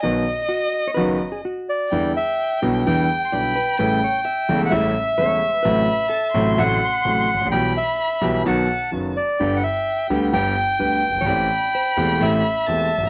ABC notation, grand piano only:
X:1
M:4/4
L:1/16
Q:1/4=128
K:Bmix
V:1 name="Grand piano" clef=bass
[B,,,B,,D,F,B,F]2 z6 [F,,,F,,D,F,B,F]2 z6 | [K:Em] [E,,D,E,G,B,E]2 z4 [B,,,B,,D,G,B,E]2 [E,,D,E,G,B,E]2 z2 [B,,,B,,D,G,B,E]2 z2 | [A,,,A,,^C,G,A,E]2 z4 [E,,,E,,C,G,A,E]2 [A,,,A,,C,G,A,E]2 z2 [E,,,E,,C,G,A,E]2 z2 | [A,,,A,,C,F,A,F]2 z4 [A,,,A,,C,F,A,F]2 [A,,,A,,C,F,A,F]2 z2 [A,,,A,,C,F,A,F]2 z/2 ^G,,,/2 A,,,/2 ^A,,,/2 |
[B,,,B,,E,G,B,G]2 z4 [B,,,B,,E,G,B,G]2 [B,,,B,,^D,F,B,F]2 z2 [F,,,F,,D,F,B,F]2 z2 | [G,,,G,,D,G,B,G]2 z4 [D,,D,G,B,G]2 [G,,,G,,D,G,B,G]2 z2 [D,,D,G,B,G]2 z/2 F,,,/2 G,,,/2 ^G,,,/2 | [A,,,A,,E,A,CG]2 z4 [E,,,E,,E,A,CG]2 [A,,,A,,E,A,CG]2 z2 [E,,,E,,E,A,CG]2 z/2 ^G,,,/2 A,,,/2 z/2 |]